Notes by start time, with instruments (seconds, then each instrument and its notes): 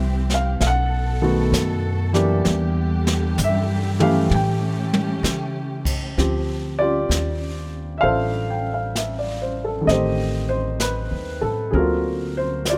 Already playing: upright bass C2, string section E3 F3 C4 G4, grand piano E5
0.30 snare
0.34 grand piano F5
0.61 upright bass B1, string section B2 A4, grand piano F5, brush sweep, snare
0.67 grand piano F#5
1.22 grand piano D#3 A3 B3 F#4
1.52 upright bass F#2, snare, hi-hat pedal
2.13 grand piano E3 A#3 D4 G4, snare
2.44 upright bass E2, string section D3 E3 G3 G4, brush sweep, snare
3.07 snare
3.38 upright bass G2, hi-hat pedal, mid tom
3.44 grand piano E5
3.99 grand piano E3 A3 C#4 G4 F5, mid tom
4.28 upright bass A2, string section A3 C#4 G4, high tom
4.34 grand piano G5
4.94 high tom
5.23 upright bass C#3, snare, hi-hat pedal
5.85 kick, crash
6.17 upright bass D2, grand piano F3 C4 G4, brush sweep, snare
6.79 grand piano F4 G4 D5
7.09 upright bass D#2, brush sweep, snare, hi-hat pedal
7.98 grand piano E5 F5
8.02 upright bass A1, grand piano D4 F4 A4 C5, brush sweep
8.50 grand piano G5
8.74 grand piano F5
8.96 grand piano E5, brush sweep, snare, hi-hat pedal
9.19 grand piano D5
9.42 grand piano C5
9.64 grand piano A4
9.81 grand piano D#3
9.85 upright bass A1, grand piano A3 C4 D#5, brush sweep, snare
9.91 grand piano G4 C5
10.49 grand piano C5
10.80 grand piano B4, brush sweep, snare, hi-hat pedal
11.11 upright bass D#2
11.41 upright bass A2, grand piano A4
11.71 upright bass D2, grand piano D3 F#3 A#3 C4 G#4, brush sweep
11.75 grand piano F#4 A#4
11.79 grand piano F4
12.37 grand piano C5
12.65 brush sweep, snare, hi-hat pedal
12.69 grand piano F4 F#4 D5